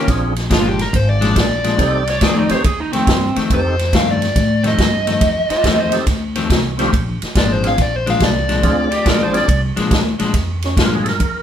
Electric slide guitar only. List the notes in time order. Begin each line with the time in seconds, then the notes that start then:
2.10 C#5
2.23 G#4
2.37 D#4
2.51 C#5
2.65 G#4
2.80 D#4
2.94 C4
5.50 F4 D5
5.67 A4 C5
5.80 C5
8.93 G4
9.09 A#4
9.23 C5
9.37 D5